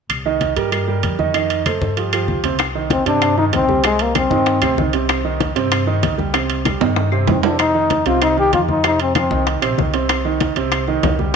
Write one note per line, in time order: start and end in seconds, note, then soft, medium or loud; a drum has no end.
0.09 0.53 C2 medium
0.09 high conga soft
0.09 high timbale medium
0.09 claves medium
0.25 0.51 D#3 medium
0.25 0.51 D#4 medium
0.25 0.51 D#5 medium
0.25 high conga soft
0.41 high conga medium
0.41 high timbale medium
0.56 1.00 G2 medium
0.56 0.69 G3 medium
0.56 0.69 G4 medium
0.56 0.70 A#4 medium
0.56 high conga soft
0.56 high timbale medium
0.72 0.85 G3 medium
0.72 0.85 G4 medium
0.72 0.85 A#4 medium
0.72 high conga soft
0.72 high timbale medium
0.72 claves medium
0.88 1.13 G3 medium
0.88 1.14 G4 medium
0.88 1.14 A#4 medium
0.88 high conga soft
1.03 1.76 F2 medium
1.03 high conga medium
1.03 high timbale medium
1.19 1.32 D#3 medium
1.19 1.32 D#4 medium
1.19 1.32 D#5 medium
1.19 high conga medium
1.34 1.60 D#3 medium
1.34 1.60 D#4 medium
1.34 1.60 D#5 medium
1.34 high conga soft
1.34 high timbale medium
1.34 claves medium
1.50 high conga soft
1.50 high timbale medium
1.66 1.91 A3 medium
1.66 1.92 A4 medium
1.66 1.92 C5 medium
1.66 high conga medium
1.66 high timbale medium
1.66 claves medium
1.81 2.25 G2 medium
1.81 high conga medium
1.97 2.10 F3 medium
1.97 2.10 F4 medium
1.97 2.10 G4 medium
1.97 high conga soft
1.97 high timbale medium
2.13 2.38 F3 medium
2.13 2.38 F4 medium
2.13 2.39 G4 medium
2.13 high conga soft
2.13 high timbale medium
2.13 claves medium
2.28 3.00 C2 medium
2.28 high conga medium
2.44 2.57 C3 medium
2.44 2.57 C4 medium
2.44 2.57 C5 medium
2.44 high conga medium
2.44 high timbale medium
2.59 high bongo medium
2.59 high conga soft
2.59 high timbale medium
2.59 claves medium
2.75 3.01 D#3 medium
2.75 3.01 D#4 medium
2.75 high conga soft
2.90 3.06 C4 medium
2.90 high bongo medium
2.90 high conga loud
2.90 high timbale medium
3.06 3.49 G2 medium
3.06 3.31 C3 medium
3.06 3.32 C4 medium
3.06 3.36 D4 medium
3.06 high bongo soft
3.06 high conga soft
3.06 high timbale medium
3.22 high bongo medium
3.22 high conga soft
3.22 high timbale medium
3.22 claves medium
3.37 3.63 D#3 medium
3.37 3.63 D#4 medium
3.37 3.45 D#4 loud
3.37 high bongo soft
3.37 high conga soft
3.52 4.25 C2 medium
3.52 3.83 C4 medium
3.52 high bongo soft
3.52 low bongo medium
3.52 high conga medium
3.52 high timbale medium
3.69 3.81 G3 medium
3.69 3.81 G4 medium
3.69 high bongo soft
3.69 high conga medium
3.84 4.10 C3 medium
3.84 4.03 G#3 loud
3.84 4.10 C4 medium
3.84 high bongo medium
3.84 high timbale medium
3.84 claves medium
3.99 4.15 A#3 medium
3.99 high conga soft
3.99 high timbale medium
4.15 4.28 G3 medium
4.15 4.90 C4 medium
4.15 4.28 G4 medium
4.15 high bongo medium
4.15 high conga loud
4.15 high timbale medium
4.15 claves medium
4.30 4.59 G2 medium
4.30 4.56 D#3 medium
4.30 4.56 D#4 medium
4.30 high bongo soft
4.30 high conga medium
4.46 high bongo medium
4.46 high conga soft
4.46 high timbale medium
4.61 4.76 D2 medium
4.61 4.75 C3 medium
4.61 4.75 C4 medium
4.61 high bongo soft
4.61 high conga soft
4.61 high timbale medium
4.61 claves medium
4.77 5.50 C2 medium
4.77 4.91 D#3 medium
4.77 4.91 D#4 medium
4.77 high bongo soft
4.77 low bongo medium
4.77 high conga medium
4.93 5.19 C3 medium
4.93 5.19 C4 medium
4.93 high bongo soft
4.93 high timbale medium
5.09 high bongo medium
5.09 high conga soft
5.09 high timbale medium
5.09 claves medium
5.25 5.50 D#3 medium
5.25 5.50 D#4 medium
5.25 high conga soft
5.40 high bongo medium
5.40 high conga medium
5.40 high timbale medium
5.55 5.99 G2 medium
5.55 5.81 C3 medium
5.55 5.81 C4 medium
5.55 high bongo soft
5.55 high conga soft
5.55 high timbale medium
5.72 high bongo medium
5.72 high conga soft
5.72 high timbale medium
5.72 claves medium
5.87 6.13 D#3 medium
5.87 6.13 D#4 medium
5.87 high bongo soft
5.87 high conga soft
6.02 6.75 C2 medium
6.02 high bongo soft
6.02 low bongo medium
6.02 high conga medium
6.02 high timbale medium
6.18 6.31 G3 medium
6.18 6.31 G4 medium
6.18 high bongo soft
6.18 high conga medium
6.34 6.60 C3 medium
6.34 6.60 C4 medium
6.34 high bongo medium
6.34 high conga soft
6.34 high timbale medium
6.34 claves medium
6.50 high conga soft
6.50 high timbale medium
6.65 6.78 G3 medium
6.65 6.78 G4 medium
6.65 high bongo medium
6.65 high conga medium
6.65 high timbale medium
6.65 claves medium
6.81 7.24 G2 medium
6.81 7.06 D#3 medium
6.81 7.06 D#4 medium
6.81 high bongo soft
6.81 high conga medium
6.81 high timbale medium
6.96 high bongo medium
6.96 high conga soft
6.96 high timbale medium
7.12 7.25 C3 medium
7.12 7.25 C4 medium
7.12 high bongo soft
7.12 high conga soft
7.12 claves medium
7.27 8.00 F2 medium
7.27 7.41 D#3 medium
7.27 7.46 C4 medium
7.27 7.41 D#4 medium
7.27 high bongo soft
7.27 low bongo medium
7.27 high conga medium
7.27 low timbale medium
7.43 7.69 C3 medium
7.43 7.69 C4 medium
7.43 7.59 D4 medium
7.43 high bongo soft
7.43 low timbale loud
7.59 8.03 D#4 loud
7.59 high bongo medium
7.59 high conga soft
7.59 high timbale loud
7.59 claves medium
7.75 8.00 D#3 medium
7.75 8.00 D#4 medium
7.75 high conga soft
7.90 high bongo medium
7.90 high conga medium
7.90 high timbale medium
8.05 8.49 C2 medium
8.05 8.32 C3 medium
8.05 8.32 C4 medium
8.05 8.21 F4 medium
8.05 high bongo soft
8.05 high conga soft
8.05 high timbale medium
8.22 8.37 D#4 loud
8.22 high bongo medium
8.22 high conga soft
8.22 high timbale medium
8.22 claves medium
8.37 8.63 D#3 medium
8.37 8.63 D#4 medium
8.37 8.53 G4 loud
8.37 high bongo soft
8.37 high conga soft
8.52 9.25 F2 medium
8.52 8.61 F4 medium
8.52 high bongo soft
8.52 low bongo medium
8.52 high conga medium
8.52 high timbale medium
8.68 8.81 F3 medium
8.68 8.84 D#4 medium
8.68 8.81 F4 medium
8.68 high bongo soft
8.68 high conga medium
8.84 9.10 C3 medium
8.84 9.10 C4 medium
8.84 9.00 D#4 loud
8.84 high bongo medium
8.84 high conga soft
8.84 high timbale medium
8.84 claves medium
9.00 9.15 C4 medium
9.00 high conga soft
9.00 high timbale medium
9.15 9.28 F3 medium
9.15 9.45 C4 medium
9.15 9.28 F4 medium
9.15 high bongo medium
9.15 high conga medium
9.15 high timbale medium
9.15 claves medium
9.31 9.60 C2 medium
9.31 9.57 D#3 medium
9.31 9.57 D#4 medium
9.31 high bongo soft
9.31 high conga medium
9.47 high bongo medium
9.47 high conga soft
9.47 high timbale medium
9.62 9.77 A#1 medium
9.62 9.75 C3 medium
9.62 9.75 C4 medium
9.62 high bongo soft
9.62 high conga soft
9.62 high timbale medium
9.62 claves medium
9.78 10.50 C2 medium
9.78 9.91 D#3 medium
9.78 9.91 D#4 medium
9.78 high bongo soft
9.78 low bongo medium
9.78 high conga medium
9.94 10.19 C3 medium
9.94 10.19 C4 medium
9.94 high bongo soft
9.94 high timbale medium
10.09 high bongo medium
10.09 high conga soft
10.09 high timbale medium
10.09 claves medium
10.25 10.50 D#3 medium
10.25 10.51 D#4 medium
10.25 high conga soft
10.40 high bongo medium
10.40 high conga medium
10.40 high timbale medium
10.56 11.00 C2 medium
10.56 10.82 C3 medium
10.56 10.82 C4 medium
10.56 high bongo soft
10.56 high conga soft
10.56 high timbale medium
10.72 high bongo medium
10.72 high conga soft
10.72 high timbale medium
10.72 claves medium
10.87 11.13 D#3 medium
10.87 11.14 D#4 medium
10.87 high bongo soft
10.87 high conga soft
11.03 11.36 C2 medium
11.03 high bongo soft
11.03 low bongo medium
11.03 high conga medium
11.03 high timbale medium
11.03 low timbale medium
11.19 11.32 G3 medium
11.19 11.32 G4 medium
11.19 high bongo soft
11.19 high conga medium